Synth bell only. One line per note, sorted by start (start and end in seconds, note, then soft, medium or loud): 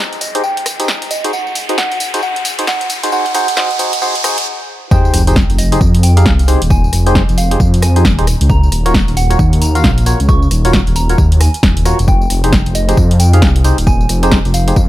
0.21 0.42 D#5 medium
0.44 0.66 G5 medium
1.11 1.32 D#5 medium
1.33 1.56 F#5 loud
1.78 2.01 F#5 loud
2.23 2.45 F#5 loud
2.68 2.90 F#5 loud
3.12 3.33 F#5 loud
3.35 3.56 F#5 loud
3.57 3.78 F#5 loud
3.80 4.01 F#5 loud
4.02 4.23 F#5 loud
4.24 4.45 F#5 loud
4.92 5.14 G5 loud
5.58 5.91 D#5 medium
6.03 6.20 G5 medium
6.70 6.93 G#5 loud
7.38 7.70 F5 medium
7.82 7.99 G#5 medium
8.50 8.72 A#5 loud
9.17 9.49 F#5 medium
9.62 9.78 A#5 medium
10.29 10.51 C#6 loud
10.96 11.28 A#5 medium
11.41 11.57 G#5 medium
12.08 12.31 G5 loud
12.75 13.07 D#5 loud
13.20 13.37 G5 medium
13.87 14.10 G#5 loud
14.54 14.86 F5 medium